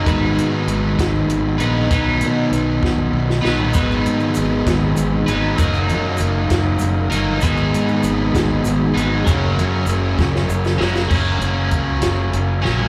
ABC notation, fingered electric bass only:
X:1
M:6/8
L:1/8
Q:3/8=65
K:G#m
V:1 name="Fingered electric bass" clef=bass
G,,, G,, G,,, G,,, G,,, A,,, | B,,, B,, B,,, B,,, B,,, B,,, | G,,, G,, G,,, G,,, G,,, G,,, | F,,, F,, F,,, F,,, F,,, =G,,, |
G,,, G,, G,,, G,,, G,,, G,,, | F,,, F,, F,,, F,,, F,,, F,,, | F,,, F,,, C,, F,,, F,,, A,,, |]